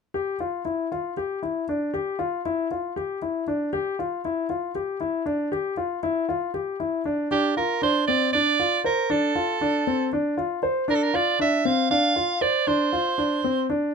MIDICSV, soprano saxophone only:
0, 0, Header, 1, 2, 480
1, 0, Start_track
1, 0, Tempo, 511073
1, 141, Time_signature, 7, 3, 24, 8
1, 13097, End_track
2, 0, Start_track
2, 0, Title_t, "Soprano saxophone"
2, 0, Program_c, 0, 64
2, 6871, Note_on_c, 0, 67, 53
2, 7091, Note_off_c, 0, 67, 0
2, 7112, Note_on_c, 0, 70, 55
2, 7331, Note_off_c, 0, 70, 0
2, 7355, Note_on_c, 0, 72, 69
2, 7574, Note_off_c, 0, 72, 0
2, 7583, Note_on_c, 0, 74, 68
2, 7807, Note_off_c, 0, 74, 0
2, 7823, Note_on_c, 0, 74, 75
2, 8270, Note_off_c, 0, 74, 0
2, 8318, Note_on_c, 0, 70, 64
2, 8556, Note_on_c, 0, 69, 60
2, 8570, Note_off_c, 0, 70, 0
2, 9509, Note_off_c, 0, 69, 0
2, 10239, Note_on_c, 0, 70, 65
2, 10287, Note_on_c, 0, 69, 55
2, 10301, Note_off_c, 0, 70, 0
2, 10361, Note_on_c, 0, 70, 61
2, 10375, Note_off_c, 0, 69, 0
2, 10475, Note_on_c, 0, 74, 67
2, 10489, Note_off_c, 0, 70, 0
2, 10708, Note_off_c, 0, 74, 0
2, 10719, Note_on_c, 0, 76, 75
2, 10951, Note_on_c, 0, 77, 73
2, 10965, Note_off_c, 0, 76, 0
2, 11180, Note_off_c, 0, 77, 0
2, 11186, Note_on_c, 0, 77, 81
2, 11663, Note_on_c, 0, 74, 68
2, 11677, Note_off_c, 0, 77, 0
2, 11905, Note_on_c, 0, 72, 60
2, 11919, Note_off_c, 0, 74, 0
2, 12862, Note_off_c, 0, 72, 0
2, 13097, End_track
0, 0, End_of_file